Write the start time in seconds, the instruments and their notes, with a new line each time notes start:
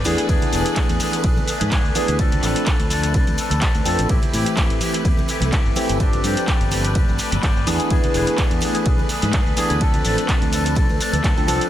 Already playing: string machine A3 B4
0.04 fingered electric bass E2, tine electric piano E3 B3 D4 G#4, clean electric guitar B3 D4 G#4, open hi-hat, tambourine, high conga, shaker
0.17 clean electric guitar D4 G#4, closed hi-hat, tambourine, shaker
0.28 fingered electric bass E2, tine electric piano E3 B3 D4 G#4, clean electric guitar B3 D4 G#4, kick, ride, tambourine, shaker
0.42 closed hi-hat, tambourine, low conga, shaker
0.52 fingered electric bass E1, clean electric guitar B3 D4 G#4, open hi-hat, tambourine, shaker
0.65 clean electric guitar D4 G#4, closed hi-hat, tambourine, shaker
0.76 clean electric guitar B3 D4 G#4, kick, clap, ride, tambourine, shaker
0.89 fingered electric bass E2, closed hi-hat, tambourine, shaker
0.99 clean electric guitar B3 D4 G#4, open hi-hat, tambourine, high conga, shaker
1.12 clean electric guitar D4 G#4, closed hi-hat, tambourine, shaker
1.23 fingered electric bass B1, clean electric guitar B3 D4 G#4, kick, ride, shaker
1.37 tambourine, high conga, low conga, shaker
1.47 clean electric guitar B3 D4 G#4, open hi-hat, tambourine, shaker
1.60 fingered electric bass G#2, clean electric guitar D4 G#4, closed hi-hat, tambourine, high conga, shaker
1.71 clean electric guitar B3 D4 G#4, kick, clap, ride, tambourine, shaker
1.85 fingered electric bass D2, shaker
1.94 tine electric piano E3 B3 D4 G#4, clean electric guitar B3 D4 G#4, muted fingered electric bass stroke, open hi-hat, tambourine, high conga, shaker
2.07 fingered electric bass D2, clean electric guitar D4 G#4, closed hi-hat, tambourine, shaker
2.18 tine electric piano F3 A4, clean electric guitar F3 C4 D4 A4, kick, ride, tambourine, shaker
2.32 closed hi-hat, tambourine, low conga, shaker
2.42 fingered electric bass A1, clean electric guitar F3 C4 D4 A4, clap, open hi-hat, tambourine, shaker
2.55 clean electric guitar C4 D4 A4, closed hi-hat, tambourine, shaker
2.66 clean electric guitar F3 C4 D4 A4, kick, clap, ride, tambourine, shaker
2.80 fingered electric bass D2, closed hi-hat, tambourine, shaker
2.90 clean electric guitar F3 C4 D4 A4, open hi-hat, tambourine, high conga, shaker
3.02 clean electric guitar C4 D4 A4, closed hi-hat, tambourine, shaker
3.13 fingered electric bass C2, clean electric guitar F3 D4 A4, kick, ride, tambourine, shaker
3.27 fingered electric bass D2, closed hi-hat, tambourine, high conga, shaker
3.37 clean electric guitar F3 C4 D4 A4, open hi-hat, tambourine, shaker
3.50 fingered electric bass D2, clean electric guitar C4 D4 A4, closed hi-hat, tambourine, high conga, shaker
3.61 clean electric guitar F3 C4 D4 A4, kick, clap, ride, tambourine, shaker
3.75 fingered electric bass D2, closed hi-hat, tambourine, shaker
3.85 fingered electric bass F2, clean electric guitar F3 C4 D4 A4, tine electric piano F3 C4 D4 A4, open hi-hat, tambourine, high conga, shaker
3.99 fingered electric bass A1, closed hi-hat, tambourine, shaker
4.09 fingered electric bass A1, tine electric piano E3 A3 G4, clean electric guitar E3 C4 E4 G4, string machine A3 B4, kick, ride, tambourine, shaker
4.22 closed hi-hat, tambourine, low conga, shaker
4.32 fingered electric bass A2, clean electric guitar E3 C4 E4 G4, open hi-hat, tambourine, shaker
4.46 clean electric guitar C4 E4 G4, closed hi-hat, tambourine, shaker
4.57 clean electric guitar E3 C4 E4 G4, kick, clap, ride, tambourine, shaker
4.70 fingered electric bass A1, closed hi-hat, tambourine, shaker
4.80 clean electric guitar E3 C4 E4 G4, open hi-hat, tambourine, high conga, shaker
4.94 clean electric guitar C4 E4 G4, closed hi-hat, tambourine, shaker
5.05 fingered electric bass E2, clean electric guitar E3 C4 E4 G4, kick, ride, tambourine, shaker
5.17 tambourine, high conga, low conga, shaker
5.28 clean electric guitar E3 C4 E4 G4, open hi-hat, tambourine, shaker
5.40 fingered electric bass C2, clean electric guitar E4 G4, closed hi-hat, tambourine, high conga, shaker
5.45 clean electric guitar C4
5.52 clean electric guitar E3 C4 E4 G4, kick, clap, ride, tambourine, shaker
5.66 fingered electric bass G1, shaker
5.76 clean electric guitar E3 C4 E4 G4, tine electric piano E3 A3 C4 G4, muted fingered electric bass stroke, open hi-hat, tambourine, high conga, shaker
5.89 fingered electric bass G1, closed hi-hat, tambourine, shaker
6.00 clean electric guitar F3 C4 D4 G4, tine electric piano C4 G4, kick, ride, tambourine, shaker
6.12 closed hi-hat, tambourine, low conga, shaker
6.23 fingered electric bass G2, clean electric guitar F3 C4 D4 G4, open hi-hat, tambourine, shaker
6.36 clean electric guitar C4 D4 G4, closed hi-hat, tambourine, shaker
6.47 clean electric guitar F3 C4 D4 G4, kick, clap, ride, tambourine, shaker
6.61 fingered electric bass G1, closed hi-hat, tambourine, shaker
6.71 clean electric guitar F3 C4 D4 G4, open hi-hat, tambourine, high conga, shaker
6.84 clean electric guitar C4 D4 G4, closed hi-hat, tambourine, shaker
6.95 fingered electric bass F1, clean electric guitar F3 C4 D4 G4, kick, ride, tambourine, shaker
7.08 fingered electric bass G1, tambourine, high conga, shaker
7.18 clean electric guitar F3 C4 D4 G4, open hi-hat, tambourine, shaker
7.31 fingered electric bass G1, clean electric guitar C4 D4 G4, closed hi-hat, tambourine, high conga, shaker
7.42 clean electric guitar F3 C4 D4 G4, kick, clap, ride, tambourine, shaker
7.56 fingered electric bass G1, shaker
7.65 fingered electric bass E2, tine electric piano E3 B3 D4 G#4, clean electric guitar B3 D4 G#4, open hi-hat, tambourine, high conga, shaker
7.79 clean electric guitar D4 G#4, closed hi-hat, tambourine, shaker
7.90 fingered electric bass E2, tine electric piano E3 B3 D4 G#4, clean electric guitar B3 D4 G#4, kick, ride, tambourine, shaker
8.04 closed hi-hat, tambourine, low conga, shaker
8.13 fingered electric bass E1, clean electric guitar B3 D4 G#4, open hi-hat, tambourine, shaker
8.27 clean electric guitar D4 G#4, closed hi-hat, tambourine, shaker
8.38 clean electric guitar B3 D4 G#4, kick, clap, ride, tambourine, shaker
8.50 fingered electric bass E2, closed hi-hat, tambourine, shaker
8.60 clean electric guitar B3 D4, open hi-hat, tambourine, high conga, shaker
8.65 clean electric guitar G#4
8.74 clean electric guitar D4 G#4, closed hi-hat, tambourine, shaker
8.85 fingered electric bass B1, clean electric guitar B3 D4 G#4, kick, ride, tambourine, shaker
8.98 tambourine, high conga, low conga, shaker
9.09 clean electric guitar B3 D4 G#4, open hi-hat, tambourine, shaker
9.22 fingered electric bass G#2, clean electric guitar D4 G#4, closed hi-hat, tambourine, high conga, shaker
9.33 clean electric guitar B3 D4 G#4, kick, clap, ride, tambourine, shaker
9.47 fingered electric bass D2, shaker
9.56 tine electric piano E3 B3 D4 G#4, clean electric guitar B3 D4 G#4, muted fingered electric bass stroke, open hi-hat, tambourine, high conga, shaker
9.70 fingered electric bass D2, clean electric guitar D4 G#4, closed hi-hat, tambourine, shaker
9.80 tine electric piano F3 C4 D4 A4, clean electric guitar F3 C4 D4 A4, kick, ride, tambourine, shaker
9.94 closed hi-hat, tambourine, low conga, shaker
10.04 fingered electric bass A1, clean electric guitar F3 C4 D4 A4, open hi-hat, tambourine, shaker
10.17 clean electric guitar C4 D4 A4, closed hi-hat, tambourine, shaker
10.28 clean electric guitar F3 C4 D4 A4, kick, clap, ride, tambourine, shaker
10.42 fingered electric bass D2, closed hi-hat, tambourine, shaker
10.52 clean electric guitar F3 C4 D4 A4, open hi-hat, tambourine, high conga, shaker
10.65 clean electric guitar C4 D4 A4, closed hi-hat, tambourine, shaker
10.75 fingered electric bass C2, clean electric guitar F3 C4 D4 A4, kick, ride, tambourine, shaker
10.89 fingered electric bass D2, tambourine, high conga, shaker
10.99 clean electric guitar F3 C4 D4 A4, open hi-hat, tambourine, shaker
11.12 fingered electric bass D2, clean electric guitar C4 D4 A4, closed hi-hat, tambourine, high conga, shaker
11.23 fingered electric bass D2, clean electric guitar F3 C4 D4 A4, kick, clap, ride, tambourine, shaker
11.36 fingered electric bass D2, tine electric piano F3 C4 D4 A4, closed hi-hat, tambourine, shaker
11.46 fingered electric bass C2, clean electric guitar F3 C4 D4 A4, tine electric piano F3 C4 D4 A4, open hi-hat, tambourine, high conga, shaker
11.61 closed hi-hat, tambourine, shaker